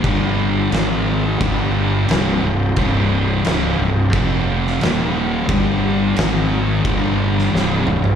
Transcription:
<<
  \new Staff \with { instrumentName = "Tonewheel organ" } { \time 4/4 \key c \minor \tempo 4 = 88 <g d' g'>4 <aes ees' bes'>4 <g d' g'>4 <c' c''>4~ | <c' c''>2 f4 <ees bes f'>4 | <g d' g'>4 <aes ees' bes'>4 <g d' g'>4 <c' c''>4 | }
  \new Staff \with { instrumentName = "Distorted electric guitar" } { \clef bass \time 4/4 \key c \minor <g, d g>4 <aes, ees aes>4 <g, d g>4 <c, g, c>8 <c, g,>8 | <c, g, c>4 <des, aes, des>8 <c, g,>8 <f, c f>4 <ees, bes, ees>4 | <g, d g>4 <aes, ees aes>4 <g, d g>4 <c, g, c>8 <c, g,>8 | }
  \new Staff \with { instrumentName = "Distorted electric guitar" } { \clef bass \time 4/4 \key c \minor <g, d g>4 <aes, ees aes>4 <g, d g>4 <c, g, c>8 <c, g,>8 | <c, g, c>4 <des, aes, des>8 <c, g,>8 <f, c f>4 <ees, bes, ees>4 | <g, d g>4 <aes, ees aes>4 <g, d g>4 <c, g, c>8 <c, g,>8 | }
  \new Staff \with { instrumentName = "Fingered electric bass" } { \clef bass \time 4/4 \key c \minor g,,4 aes,,4 g,,4 c,,8 c,,8 | c,,4 des,,8 c,,8 f,,4 ees,,4 | g,,4 aes,,4 g,,4 c,,8 c,,8 | }
  \new DrumStaff \with { instrumentName = "Drums" } \drummode { \time 4/4 <cymc bd>4 <cymc sn>4 <cymc bd>4 <cymc sn>4 | <cymc bd>4 <cymc sn>4 <cymc bd>8. sn16 <cymc sn>4 | <cymc bd>4 <cymc sn>4 <cymc bd>8. sn16 sn8 toml16 tomfh16 | }
>>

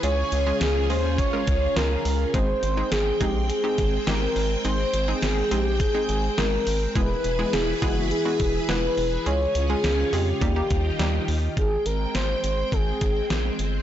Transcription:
<<
  \new Staff \with { instrumentName = "Soft synth lead" } { \time 4/4 \key aes \major \tempo 4 = 104 des''4 aes'8 c''8 des''4 bes'4 | c''4 aes'8 g'8 aes'4 bes'4 | c''4 aes'8 g'8 aes'4 bes'4 | b'4 gis'8 ges'8 gis'4 b'4 |
des''8. aes'8. g'2 r8 | aes'8 bes'8 c''8 c''8 aes'4. r8 | }
  \new Staff \with { instrumentName = "String machine" } { \time 4/4 \key aes \major << { <des des'>1 | <aes g''>1~ | <aes g''>1 | <e e' b'>1 |
<des des' aes'>2 <ees ees' g'>2 | <aes g''>1 | } \\ { <f' gis'>1 | c'1~ | c'1 | gis'1 |
f'1 | c'1 | } >> }
  \new Staff \with { instrumentName = "Synth pluck" } { \time 4/4 \key aes \major <aes des' f' aes'>8 r16 <aes des' f' aes'>8 r16 <aes des' f' aes'>8 r16 <aes des' f' bes'>8 r16 <aes des' f' bes'>8 r8 | <aes c' ees' aes'>8 r16 <aes c' ees' aes'>8 r16 <aes c' ees' aes'>8 r16 <aes c' ees' g'>8 r16 <aes c' ees' g'>8 r8 | <aes c' ees' aes'>8 r16 <aes c' ees' aes'>8 r16 <aes c' ees' aes'>8 r16 <aes c' ees' aes'>8 r16 <aes c' ees' aes'>8 r8 | <gis b e' gis'>8 r16 <gis b e' gis'>8 r16 <gis b e' gis'>8 r16 <gis b e' ges'>8 r16 <gis b e' b'>8 r8 |
<aes des' f' aes'>8 r16 <aes des' f' aes'>8 r16 <aes des' f' aes'>8 <g bes ees' g'>16 <g bes ees' g'>8 r16 <g bes ees' g'>8 r8 | r1 | }
  \new Staff \with { instrumentName = "Analog synth bass" } { \clef bass \time 4/4 \key aes \major des,8 des,8 des,8 ees,8. r16 des,8 des,8 des,8 | aes,,8 aes,,8 aes,,8 bes,,8. r16 aes,,8 aes,,8 aes,,8 | aes,,8 aes,,8 aes,,8 bes,,8. r16 aes,,8 aes,,8 aes,,8 | e,,8 e,,8 e,,8 ges,,8. r16 e,,8 e,,8 e,,8 |
des,8 des,8 des,8 f,8 ees,8 ees,8 ees,8 ees,8 | aes,,8 aes,,8 aes,,8 aes,,8 aes,,8 aes,,8 bes,,8 g,,8 | }
  \new DrumStaff \with { instrumentName = "Drums" } \drummode { \time 4/4 hh8 hh8 <hh sn>8 hho8 <hh bd>8 <hh bd>8 <hh sn>8 hho8 | <hh bd>8 hh8 <hh sn>8 <hh bd>8 hh8 <hh bd>8 <hh sn>8 hho8 | hh8 hh8 <hh sn>8 hh8 <hh bd>8 hh8 <hh sn>8 hho8 | <hh bd>8 hh8 <hh sn>8 <hh bd>8 hh8 <hh bd>8 <hh sn>8 hho8 |
hh8 hh8 <hh sn>8 hho8 <hh bd>8 <hh bd>8 <hh sn>8 hho8 | <hh bd>8 hh8 <hh sn>8 hh8 <hh bd>8 <hh bd>8 <hh sn>8 hh8 | }
>>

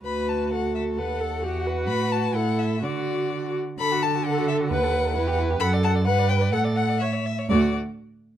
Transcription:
<<
  \new Staff \with { instrumentName = "Violin" } { \time 2/4 \key d \major \tempo 4 = 130 b''8 a''8 fis''8 e''8 | fis''4. r8 | b''8 a''8 fis''8 e''8 | d''4. r8 |
b''8 a''8 fis''8 e''8 | fis''4. r8 | b''8 a''8 fis''8 g''8 | fis''8 fis''8 e''4 |
d''8 r4. | }
  \new Staff \with { instrumentName = "Violin" } { \time 2/4 \key d \major b'4 a'4~ | a'4 fis'4~ | fis'4 e'4 | fis'4. r8 |
a'16 fis'16 a'16 fis'16 a'16 fis'16 a'16 fis'16 | b'16 a'16 b'16 a'16 e'16 g'16 e'16 g'16 | fis''16 d''16 fis''16 d''16 b'16 d''16 b'16 d''16 | fis''16 d''16 fis''16 d''16 e''16 cis''16 e''16 cis''16 |
fis'8 r4. | }
  \new Staff \with { instrumentName = "Viola" } { \time 2/4 \key d \major fis'2 | b'8 a'8 g'8 b'8~ | b'4 a'4 | fis'4. r8 |
r4 a'4 | b'4 b'4 | a'4 b'4 | a'4 cis''8 r8 |
a8 r4. | }
  \new Staff \with { instrumentName = "Cello" } { \clef bass \time 2/4 \key d \major d,2 | dis,4 e,4 | a,4 a,4 | d4. r8 |
d2 | dis,4 e,4 | fis,4 g,4 | a,4. r8 |
d,8 r4. | }
>>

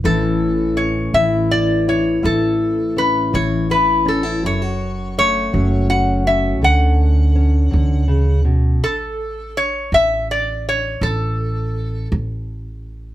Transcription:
<<
  \new Staff \with { instrumentName = "Resonator guitar played with a steel bar" } { \time 6/8 \key a \major \tempo 4. = 55 a'4 cis''8 e''8 d''8 cis''8 | a'4 b'8 cis''8 b'8 a'8 | cis''4 cis''4 fis''8 e''8 | fis''2~ fis''8 r8 |
a'4 cis''8 e''8 d''8 cis''8 | a'4. r4. | }
  \new Staff \with { instrumentName = "Steel-string acoustic guitar" } { \time 6/8 \key a \major << { <e cis' e'>4. e'8 e'8 e'8 | e'4 cis'8 e'8 e'8 cis'16 e'16 | e'16 fis'8. a8 cis'8 fis'8 cis'8 | a'4 cis'2 |
r2. | r2. | } \\ { a,4. e4. | a,4. e4. | fis,4. fis4. | d4. d8 cis8 b,8 |
r2. | r2. | } >> }
  \new Staff \with { instrumentName = "Upright bass" } { \clef bass \time 6/8 \key a \major a,,4. a,,4. | a,,4. a,,4. | fis,,4. fis,,4. | d,4. d,4. |
a,,4. a,,4. | a,,4. a,,4. | }
>>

